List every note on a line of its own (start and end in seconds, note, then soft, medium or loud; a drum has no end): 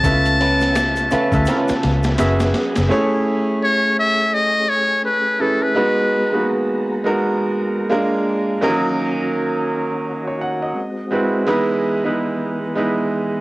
0.00 2.16 C#3 medium
0.00 2.16 A3 medium
0.00 2.16 B3 medium
0.00 0.97 C#4 loud
0.00 2.16 F4 medium
0.00 2.86 E5 medium
0.00 2.19 A5 loud
0.00 kick loud
0.00 shaker medium
0.04 1.07 C#2 loud
0.04 0.12 E4 medium
0.04 0.97 A4 medium
0.04 0.98 B4 medium
0.04 0.98 E5 loud
0.04 closed hi-hat medium
0.11 1.00 F4 medium
0.25 closed hi-hat soft
0.25 shaker soft
0.40 0.73 C#4 medium
0.40 0.74 F4 medium
0.40 0.74 B4 medium
0.40 closed hi-hat medium
0.60 snare soft
0.60 closed hi-hat medium
0.60 shaker medium
0.75 finger snap medium
0.75 snare loud
0.75 closed hi-hat medium
0.75 shaker medium
0.96 closed hi-hat soft
0.96 shaker soft
1.11 1.29 C#4 medium
1.11 1.32 C#4 medium
1.11 1.29 F4 medium
1.11 1.32 F4 medium
1.11 1.30 A4 medium
1.11 1.30 B4 medium
1.11 1.32 B4 medium
1.11 1.30 E5 medium
1.11 muted fingered electric bass stroke soft
1.11 closed hi-hat medium
1.11 shaker soft
1.32 1.46 D2 medium
1.32 2.16 C#4 medium
1.32 2.18 F4 medium
1.32 2.18 A4 medium
1.32 2.18 B4 medium
1.32 2.19 E5 medium
1.32 kick medium
1.32 closed hi-hat soft
1.32 shaker soft
1.45 1.72 C#4 medium
1.45 1.72 F4 loud
1.45 snare medium
1.45 closed hi-hat medium
1.45 shaker medium
1.49 1.73 B4 loud
1.68 muted fingered electric bass stroke soft
1.68 snare medium
1.68 closed hi-hat soft
1.68 shaker soft
1.83 2.16 C#2 medium
1.83 snare medium
1.83 closed hi-hat medium
2.03 snare medium
2.03 closed hi-hat soft
2.03 shaker soft
2.18 2.52 F#1 medium
2.18 2.89 F#3 medium
2.18 2.80 C#4 loud
2.18 2.80 F#4 medium
2.18 2.88 G#4 medium
2.18 2.81 G#4 medium
2.18 2.89 B4 medium
2.18 2.81 B4 medium
2.18 2.81 E5 loud
2.18 finger snap medium
2.18 snare medium
2.18 closed hi-hat medium
2.18 shaker medium
2.40 snare medium
2.40 closed hi-hat soft
2.40 shaker soft
2.54 snare medium
2.54 closed hi-hat medium
2.76 2.90 F#1 medium
2.76 snare medium
2.76 closed hi-hat soft
2.76 shaker soft
2.89 4.11 A3 loud
2.89 5.72 A3 medium
2.89 4.11 C#4 loud
2.89 5.73 C#4 medium
2.89 4.12 E4 loud
2.89 5.72 G#4 medium
2.89 4.12 G#4 loud
2.89 4.12 C#5 loud
3.63 3.95 C#5 loud
3.99 4.35 E5 loud
4.34 4.71 D#5 loud
4.69 5.04 C#5 loud
5.05 5.42 B4 medium
5.39 5.70 A3 medium
5.39 5.71 C#4 medium
5.39 5.71 E4 medium
5.39 5.71 G#4 medium
5.39 5.64 A4 medium
5.39 5.72 B4 medium
5.62 6.69 B4 medium
5.75 6.21 G#3 medium
5.75 8.58 G#3 medium
5.75 6.22 B3 medium
5.75 7.87 B3 medium
5.75 6.22 D#4 medium
5.75 7.87 F#4 medium
5.75 6.22 F#4 medium
5.75 6.23 B4 loud
5.75 7.87 A#5 medium
6.32 6.90 G#3 medium
6.32 6.38 A#3 medium
6.32 6.90 D#4 medium
6.32 6.90 F#4 medium
6.32 6.91 B4 medium
6.39 6.93 B3 medium
7.04 7.88 G#3 medium
7.04 7.90 B3 medium
7.04 7.90 D#4 medium
7.04 7.91 F#4 medium
7.04 7.90 A#4 loud
7.90 8.52 G#3 loud
7.90 8.60 A#3 medium
7.90 8.52 A#3 medium
7.90 8.60 D4 medium
7.90 8.52 D4 medium
7.90 8.52 F4 medium
7.90 8.53 A#4 loud
8.61 10.74 D#3 medium
8.61 8.69 E3 medium
8.61 9.83 A#3 loud
8.61 10.74 C#4 medium
8.61 9.83 C#4 loud
8.61 9.84 D#4 loud
8.61 11.44 F#4 medium
8.61 9.84 A#4 loud
8.68 9.86 F#3 loud
10.27 10.40 C#5 medium
10.41 10.61 F#5 medium
10.62 10.96 D#5 medium
10.75 11.46 G#3 medium
10.75 11.46 C4 medium
11.11 11.42 G#3 medium
11.11 11.42 C4 medium
11.11 11.43 E4 medium
11.11 11.43 F#4 medium
11.11 11.43 B4 medium
11.47 13.41 E3 medium
11.47 11.93 G#3 loud
11.47 11.93 B3 loud
11.47 13.41 B3 medium
11.47 11.94 D#4 loud
11.47 11.94 E4 loud
11.47 13.41 G#4 medium
11.47 11.94 B4 loud
12.04 12.61 G#3 medium
12.04 12.61 B3 medium
12.04 12.62 D#4 medium
12.04 12.62 E4 medium
12.04 12.62 B4 medium
12.75 13.41 G#3 medium
12.75 13.41 B3 medium
12.75 13.41 D#4 medium
12.75 13.41 E4 medium
12.75 13.41 B4 loud